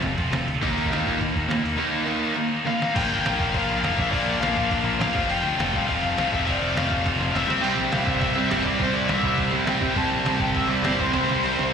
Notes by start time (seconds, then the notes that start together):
Already playing: F3 A3 C4 F4
0.02 F1 F2 C3, kick, open hi-hat
0.17 F1 F3 A3 C4 F4, kick, open hi-hat
0.31 F1 F2 C3, snare, open hi-hat
0.48 D2, open hi-hat
0.61 D#2 D#3 G3 A#3 D#4, kick, open hi-hat
0.77 D#2, open hi-hat
0.85 kick
0.90 D#2 D#3 A#3 D#4, snare, open hi-hat
1.06 A#2 D#3 G3 A#3 D#4, kick, open hi-hat
1.18 D#2 D#3 A#3, kick, open hi-hat
1.36 D#2, kick, open hi-hat
1.48 D#2 D#3 G3 A#3, snare, open hi-hat
1.52 D#4
1.64 D#2, open hi-hat
1.76 D#3 G3 A#3 D#4
1.80 D#4
2.06 D#3 A#3 D#4
2.22 D#3 G3 A#3 D#4
2.35 D#3 A#3
2.65 D#3 G3 A#3 D#4 F5, snare
2.82 snare
2.94 A#1 A#2 F3 A#3 D4 F4 G5, kick, open hi-hat, crash
3.11 G1
3.24 A#1 A#2 F3 A#3 D4 F4, snare, open hi-hat
3.40 F1 F5, kick
3.54 A#1 A#2 F3 A#3 D4 F4 F5, kick, open hi-hat
3.69 A#1
3.83 F1 A#2 F3 A#3 D4 F4, snare, open hi-hat
3.95 A#1 A#2 F3 A#3, kick
3.99 E5
4.10 A#1 A#2 F3 A#3 D5, kick, open hi-hat
4.14 D4 F4
4.26 A#1
4.40 A#1 A#2 F3 A#3 D4 F4 F5, snare, open hi-hat
4.57 A#1, kick
4.70 A#1 A#2 F3 A#3 D4 F4, kick, open hi-hat
4.84 A#1
5.00 A#1 A#2 F3 A#3 D4 F4 F5, snare, open hi-hat
5.13 F1 F2 C3 F3, kick
5.28 F1 F2 C3 F3 A3 C4 F4 G5, open hi-hat
5.43 D2
5.58 F1 F2 C3 F3 A3 C4 F4 G5, snare, open hi-hat
5.74 C2 F5, kick
5.88 F1 F2 C3 F3 A3 C4 F4 F5, kick, open hi-hat
6.03 F1
6.15 C2 F2 C3 F3 A3 C4 F4, snare, open hi-hat
6.31 F1 F2 C3 F3 E5, kick
6.47 F1 F2 C3 F3 A3 C4 F4 D5, kick, open hi-hat
6.61 F1
6.75 F1 F2 C3 F3 A3 C4 F4 F5, snare, open hi-hat
6.90 F1, kick
7.04 F1 F2 C3 F3 A3 C4 F4, kick, snare, open hi-hat
7.18 F1, snare
7.32 F1 F2 C3 F3 A3 C4 F4 E5, open hi-hat
7.36 snare
7.47 C2 C3 G3 C4, snare
7.61 C2 C3 G3 C4 E4 G5, splash, crash
7.76 A#1
7.92 C2 C3 G3 C4 E4 F5, snare, open hi-hat
8.06 G1 E5, kick
8.21 C2 C3 G3 C4 E4 E5, kick, open hi-hat
8.35 C2 C3 G3 C4
8.49 G1 C3 G3 C4 E4, snare, open hi-hat
8.64 C2 C3 G3 C4 D5, kick
8.78 C2 C3 G3 C4 E4 C5, kick, open hi-hat
8.93 C2 D5
9.07 C2 C3 G3 C4 E4 E5, snare, open hi-hat
9.23 C2, kick
9.38 C2 C3 G3 C4 E4, kick, open hi-hat
9.51 C2 C3 G3 C4
9.65 C2 C3 G3 C4 E4 G5, snare, open hi-hat
9.70 G3
9.79 C3 G3 C4 G5, kick
9.96 C2 C3 G3 C4 E4 A5, kick, open hi-hat
10.12 A#1
10.24 C2 C3 G3 C4 E4, snare, open hi-hat
10.40 G1 G5, kick
10.54 C2 C3 G3 C4 E4 E5, kick, open hi-hat
10.67 C2 C3 G3 C4 D5
10.82 G1 C3 G3 C4 E4, snare, open hi-hat
10.98 C2 C3 G3 C4 C5, kick
11.12 C2 C3 G3 C4 E4, kick, snare, open hi-hat
11.28 C2, snare
11.43 C2 C3 G3 C4 E4, open hi-hat
11.59 C2, snare